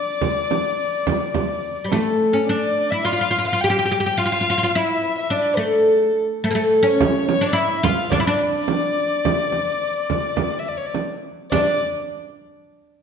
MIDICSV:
0, 0, Header, 1, 4, 480
1, 0, Start_track
1, 0, Tempo, 564440
1, 185, Time_signature, 4, 2, 24, 8
1, 11076, End_track
2, 0, Start_track
2, 0, Title_t, "Violin"
2, 0, Program_c, 0, 40
2, 0, Note_on_c, 0, 74, 76
2, 1621, Note_off_c, 0, 74, 0
2, 1626, Note_on_c, 0, 69, 62
2, 2073, Note_off_c, 0, 69, 0
2, 2103, Note_on_c, 0, 74, 80
2, 2467, Note_on_c, 0, 76, 79
2, 2480, Note_off_c, 0, 74, 0
2, 2590, Note_on_c, 0, 77, 91
2, 2602, Note_off_c, 0, 76, 0
2, 2940, Note_off_c, 0, 77, 0
2, 2945, Note_on_c, 0, 77, 84
2, 3066, Note_on_c, 0, 79, 83
2, 3079, Note_off_c, 0, 77, 0
2, 3427, Note_off_c, 0, 79, 0
2, 3431, Note_on_c, 0, 79, 80
2, 3553, Note_on_c, 0, 77, 90
2, 3566, Note_off_c, 0, 79, 0
2, 4042, Note_on_c, 0, 76, 87
2, 4055, Note_off_c, 0, 77, 0
2, 4395, Note_off_c, 0, 76, 0
2, 4409, Note_on_c, 0, 76, 72
2, 4531, Note_on_c, 0, 74, 70
2, 4543, Note_off_c, 0, 76, 0
2, 4725, Note_on_c, 0, 70, 40
2, 4738, Note_off_c, 0, 74, 0
2, 4763, Note_on_c, 0, 69, 71
2, 4776, Note_off_c, 0, 70, 0
2, 5236, Note_off_c, 0, 69, 0
2, 5491, Note_on_c, 0, 69, 77
2, 5591, Note_off_c, 0, 69, 0
2, 5604, Note_on_c, 0, 69, 71
2, 5846, Note_on_c, 0, 73, 71
2, 5859, Note_off_c, 0, 69, 0
2, 6192, Note_off_c, 0, 73, 0
2, 6197, Note_on_c, 0, 73, 86
2, 6311, Note_on_c, 0, 74, 78
2, 6324, Note_off_c, 0, 73, 0
2, 6442, Note_on_c, 0, 76, 82
2, 6455, Note_off_c, 0, 74, 0
2, 6665, Note_on_c, 0, 77, 95
2, 6678, Note_off_c, 0, 76, 0
2, 6902, Note_off_c, 0, 77, 0
2, 6907, Note_on_c, 0, 74, 79
2, 7018, Note_off_c, 0, 74, 0
2, 7034, Note_on_c, 0, 74, 81
2, 9006, Note_on_c, 0, 76, 64
2, 9019, Note_off_c, 0, 74, 0
2, 9085, Note_on_c, 0, 74, 63
2, 9097, Note_off_c, 0, 76, 0
2, 9162, Note_on_c, 0, 73, 59
2, 9175, Note_off_c, 0, 74, 0
2, 9235, Note_on_c, 0, 74, 64
2, 9248, Note_off_c, 0, 73, 0
2, 9310, Note_off_c, 0, 74, 0
2, 9795, Note_on_c, 0, 74, 95
2, 10016, Note_off_c, 0, 74, 0
2, 11076, End_track
3, 0, Start_track
3, 0, Title_t, "Oud"
3, 0, Program_c, 1, 24
3, 0, Note_on_c, 1, 62, 78
3, 1569, Note_on_c, 1, 55, 50
3, 1611, Note_off_c, 1, 62, 0
3, 1627, Note_off_c, 1, 55, 0
3, 1636, Note_on_c, 1, 57, 78
3, 1984, Note_on_c, 1, 61, 64
3, 2002, Note_off_c, 1, 57, 0
3, 2109, Note_off_c, 1, 61, 0
3, 2120, Note_on_c, 1, 62, 79
3, 2478, Note_off_c, 1, 62, 0
3, 2481, Note_on_c, 1, 64, 83
3, 2589, Note_off_c, 1, 64, 0
3, 2592, Note_on_c, 1, 65, 81
3, 2648, Note_off_c, 1, 65, 0
3, 2658, Note_on_c, 1, 65, 58
3, 2720, Note_off_c, 1, 65, 0
3, 2729, Note_on_c, 1, 65, 69
3, 2787, Note_off_c, 1, 65, 0
3, 2812, Note_on_c, 1, 65, 69
3, 2860, Note_off_c, 1, 65, 0
3, 2879, Note_on_c, 1, 65, 67
3, 2925, Note_off_c, 1, 65, 0
3, 2935, Note_on_c, 1, 65, 60
3, 2985, Note_off_c, 1, 65, 0
3, 3000, Note_on_c, 1, 65, 71
3, 3050, Note_off_c, 1, 65, 0
3, 3095, Note_on_c, 1, 67, 95
3, 3134, Note_off_c, 1, 67, 0
3, 3144, Note_on_c, 1, 67, 75
3, 3203, Note_off_c, 1, 67, 0
3, 3221, Note_on_c, 1, 67, 79
3, 3268, Note_off_c, 1, 67, 0
3, 3278, Note_on_c, 1, 67, 63
3, 3319, Note_off_c, 1, 67, 0
3, 3330, Note_on_c, 1, 67, 83
3, 3391, Note_off_c, 1, 67, 0
3, 3402, Note_on_c, 1, 67, 74
3, 3445, Note_off_c, 1, 67, 0
3, 3455, Note_on_c, 1, 67, 68
3, 3517, Note_off_c, 1, 67, 0
3, 3551, Note_on_c, 1, 65, 99
3, 3609, Note_off_c, 1, 65, 0
3, 3619, Note_on_c, 1, 65, 69
3, 3665, Note_off_c, 1, 65, 0
3, 3675, Note_on_c, 1, 65, 73
3, 3739, Note_off_c, 1, 65, 0
3, 3749, Note_on_c, 1, 65, 60
3, 3809, Note_off_c, 1, 65, 0
3, 3825, Note_on_c, 1, 65, 86
3, 3879, Note_off_c, 1, 65, 0
3, 3893, Note_on_c, 1, 65, 70
3, 3929, Note_off_c, 1, 65, 0
3, 3940, Note_on_c, 1, 65, 70
3, 4000, Note_off_c, 1, 65, 0
3, 4042, Note_on_c, 1, 64, 88
3, 4506, Note_off_c, 1, 64, 0
3, 4510, Note_on_c, 1, 62, 79
3, 4732, Note_off_c, 1, 62, 0
3, 4737, Note_on_c, 1, 57, 70
3, 5188, Note_off_c, 1, 57, 0
3, 5475, Note_on_c, 1, 57, 78
3, 5529, Note_off_c, 1, 57, 0
3, 5532, Note_on_c, 1, 58, 67
3, 5566, Note_off_c, 1, 58, 0
3, 5570, Note_on_c, 1, 57, 82
3, 5802, Note_off_c, 1, 57, 0
3, 5806, Note_on_c, 1, 61, 83
3, 6303, Note_on_c, 1, 62, 91
3, 6312, Note_off_c, 1, 61, 0
3, 6399, Note_off_c, 1, 62, 0
3, 6403, Note_on_c, 1, 64, 95
3, 6659, Note_off_c, 1, 64, 0
3, 6662, Note_on_c, 1, 65, 97
3, 6900, Note_off_c, 1, 65, 0
3, 6903, Note_on_c, 1, 62, 88
3, 6961, Note_off_c, 1, 62, 0
3, 6971, Note_on_c, 1, 64, 77
3, 7029, Note_off_c, 1, 64, 0
3, 7035, Note_on_c, 1, 62, 93
3, 9279, Note_off_c, 1, 62, 0
3, 9797, Note_on_c, 1, 62, 75
3, 10016, Note_off_c, 1, 62, 0
3, 11076, End_track
4, 0, Start_track
4, 0, Title_t, "Frame drum"
4, 183, Note_on_c, 9, 64, 83
4, 268, Note_off_c, 9, 64, 0
4, 433, Note_on_c, 9, 64, 69
4, 518, Note_off_c, 9, 64, 0
4, 908, Note_on_c, 9, 64, 91
4, 993, Note_off_c, 9, 64, 0
4, 1143, Note_on_c, 9, 64, 79
4, 1228, Note_off_c, 9, 64, 0
4, 1630, Note_on_c, 9, 64, 71
4, 1716, Note_off_c, 9, 64, 0
4, 5958, Note_on_c, 9, 64, 98
4, 6043, Note_off_c, 9, 64, 0
4, 6196, Note_on_c, 9, 64, 73
4, 6281, Note_off_c, 9, 64, 0
4, 6668, Note_on_c, 9, 64, 91
4, 6753, Note_off_c, 9, 64, 0
4, 6901, Note_on_c, 9, 64, 87
4, 6986, Note_off_c, 9, 64, 0
4, 7381, Note_on_c, 9, 64, 73
4, 7466, Note_off_c, 9, 64, 0
4, 7867, Note_on_c, 9, 64, 84
4, 7952, Note_off_c, 9, 64, 0
4, 8099, Note_on_c, 9, 64, 61
4, 8184, Note_off_c, 9, 64, 0
4, 8587, Note_on_c, 9, 64, 70
4, 8672, Note_off_c, 9, 64, 0
4, 8817, Note_on_c, 9, 64, 76
4, 8902, Note_off_c, 9, 64, 0
4, 9308, Note_on_c, 9, 64, 62
4, 9393, Note_off_c, 9, 64, 0
4, 9797, Note_on_c, 9, 64, 86
4, 9882, Note_off_c, 9, 64, 0
4, 11076, End_track
0, 0, End_of_file